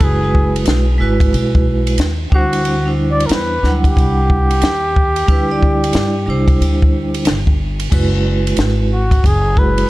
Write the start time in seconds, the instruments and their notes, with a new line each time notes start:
0.00 upright bass F#1, vibraphone G#3 E4 F#4 B4, flugelhorn G#4, kick, ride
0.21 vibraphone G#3 E4 F#4 B4
0.35 kick
0.56 ride
0.65 upright bass B1, snare, hi-hat pedal, ride
0.98 upright bass G#1, vibraphone G#3 E4 F#4 B4
1.20 kick, ride
1.33 upright bass B1, ride
1.55 kick
1.87 ride
1.98 upright bass D#2, snare, hi-hat pedal, ride
2.30 upright bass D2, vibraphone G3 D4 E4, kick
2.34 flugelhorn F#4, vibraphone C5
2.53 ride
2.65 ride
2.84 vibraphone G3 D4 E4
2.88 vibraphone C5
3.10 flugelhorn D5
3.20 ride
3.26 upright bass E2, flugelhorn A#4, hi-hat pedal, ride
3.31 flugelhorn B4, snare
3.62 upright bass D2, vibraphone F#3 D4 E4 F#5, snare
3.68 vibraphone G3
3.84 flugelhorn G4, kick, ride
3.97 upright bass C2, kick, ride
4.30 kick
4.51 ride
4.62 upright bass D#2, snare, hi-hat pedal, ride
4.96 kick
5.16 ride
5.26 upright bass D2, vibraphone G3 D4 E4, kick, ride
5.30 vibraphone B4
5.47 vibraphone G3 D4 E4 D5
5.63 kick
5.84 ride
5.93 upright bass G2, snare, hi-hat pedal, ride
6.26 upright bass C2, vibraphone G3 D4 E4 C5
6.48 kick, ride
6.61 upright bass D2, ride
6.82 kick
7.14 ride
7.25 upright bass G1, snare, hi-hat pedal, ride
7.47 kick
7.80 ride
7.90 upright bass F#1, vibraphone G#3 E4 F#4 B4, kick, crash
8.47 ride
8.57 upright bass G#1, snare, hi-hat pedal, ride
8.93 flugelhorn F#4
9.11 kick, ride
9.24 upright bass F#1, flugelhorn G#4, kick, ride
9.54 vibraphone G#3 E4 F#4 G#4, kick
9.58 flugelhorn B4
9.78 ride